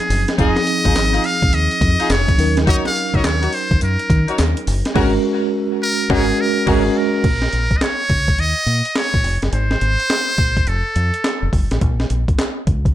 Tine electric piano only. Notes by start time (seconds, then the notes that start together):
Already playing: F3 C4 D#4 G#4
0.38 F3 C4 D#4 G#4
2.38 F#3 C#4 D#4 A#4
4.95 G#3 C#4 F#4 A#4
6.10 G#3 C#4 F#4 A#4
6.67 G#3 C#4 F#4 A#4